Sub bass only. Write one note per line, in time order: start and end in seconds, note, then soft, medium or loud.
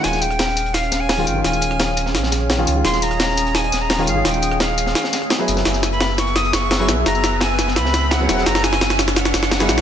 0.04 0.91 D#1 loud
0.92 1.29 D#1 medium
1.27 1.43 G#1 medium
1.45 2.16 D#1 medium
2.15 2.66 A#1 medium
2.67 2.83 C#2 medium
2.85 3.71 D#1 medium
3.72 4.09 D#1 medium
4.08 4.23 G#1 medium
4.25 4.94 D#1 medium
5.48 5.64 F#1 loud
5.66 6.52 F#1 loud
6.53 6.90 F#1 medium
6.89 7.04 B1 medium
7.06 7.78 F#1 loud
7.76 8.27 C#2 medium
8.29 8.45 E1 medium
8.46 9.33 F#1 loud
9.34 9.70 F#1 medium
9.69 9.81 B1 medium